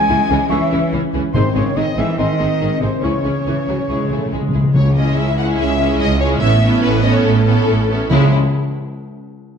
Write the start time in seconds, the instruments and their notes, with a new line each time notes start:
Already playing: french horn section E3 C#4, cello section G#3, trumpet G#5, flute section G#5, violin section G#5
0.09 double bass section C#2, viola section E3 C#4, violin section E4 G#4
0.30 double bass section C#2, viola section E3 C#4, violin section E4 G#4
0.49 double bass section C#2, french horn section E3 C#4, cello section E3, viola section E3 C#4, clarinet E4, violin section E4 G#4 E5, flute section E5, trumpet E5, oboe C#6
0.71 double bass section C#2, viola section E3 C#4, violin section E4 G#4
0.92 double bass section C#2, viola section E3 C#4, violin section E4 G#4
1.13 double bass section C#2, viola section E3 C#4, violin section E4 G#4
1.33 double bass section G#1, timpani G#2, cello section C3, french horn section D#3 C4, viola section G#3 C4, violin section D#4 G#4 C5, clarinet D#4, flute section C5, trumpet C5, oboe C6
1.54 double bass section G#1, cello section C#3, viola section G#3 C4, violin section D#4 G#4 C#5, flute section C#5, trumpet C#5
1.75 double bass section G#1, cello section D#3, french horn section D#3 C4, viola section G#3 C4, violin section D#4 G#4 D#5, flute section D#5, trumpet D#5
1.97 double bass section G#1, cello section E3, viola section G#3 C4, violin section D#4 G#4 E5, flute section E5, trumpet E5
2.18 double bass section G#1, cello section D#3, french horn section D#3 C4, viola section G#3 C4, clarinet D#4, violin section D#4 G#4 D#5, flute section D#5, trumpet D#5, oboe C6
2.39 double bass section G#1, viola section G#3 C4, violin section D#4 G#4
2.61 double bass section G#1, viola section G#3 C4, violin section D#4 G#4
2.81 double bass section G#1, cello section C3, viola section G#3 C4, violin section D#4 G#4 C5, flute section C5, trumpet C5
3.02 double bass section C#2, cello section C#3, timpani C#3, french horn section E3 C#4, viola section G#3 C#4, clarinet E4, violin section E4 G#4 C#5, flute section C#5, trumpet C#5, oboe C#6
3.13 timpani C#3
3.20 timpani C#3
3.24 double bass section C#2, timpani C#3, viola section G#3 C#4, violin section E4 G#4
3.34 timpani C#3
3.46 double bass section C#2, timpani C#3, viola section E3, violin section E4 G#4
3.65 double bass section C#2, timpani C#3, viola section F#3, violin section E4 G#4
3.72 timpani C#3
3.88 double bass section C#2, timpani C#3, viola section G#3, violin section E4 G#4, clarinet E4, oboe C#6
3.96 timpani C#3
4.03 timpani C#3
4.11 double bass section C#2, timpani C#3, viola section A3, violin section E4 G#4
4.18 timpani C#3
4.26 timpani C#3
4.32 double bass section C#2, timpani C#3, viola section G#3, violin section E4 G#4
4.41 timpani C#3
4.49 timpani C#3
4.53 double bass section C#2, timpani C#3, violin section E4 G#4
4.63 timpani C#3
4.74 cello section C#2, double bass section C#2, timpani C#3, violin section C#5
4.95 viola section G#3 C#4, violin section E4 G#4 D#5
5.16 double bass section C#2, cello section C#2, violin section E5
5.38 viola section G#3 C#4, violin section E4 G#4 F#5
5.58 cello section C#2, double bass section C#2, violin section E5
5.80 viola section G#3 C#4, violin section E4 G#4
5.99 cello section C#2, double bass section C#2, violin section D#5
6.20 viola section G#3 C#4, violin section E4 G#4 C#5
6.41 double bass section A1, cello section A2, viola section B3 C#4, violin section E4 A4 E5
6.62 viola section B3 C#4, violin section E4 A4
6.82 double bass section A1, cello section A2, violin section B4
7.03 viola section B3 C#4, violin section E4 A4 D#5
7.13 violin section C#5
7.24 double bass section A1, cello section A2, violin section A4
7.46 viola section B3 C#4, violin section E4 A4
7.67 double bass section A1, cello section A2
7.89 viola section B3 C#4, violin section E4 A4
8.09 double bass section C#2, cello section C#3, timpani C#3, viola section G#3, violin section C#4 E4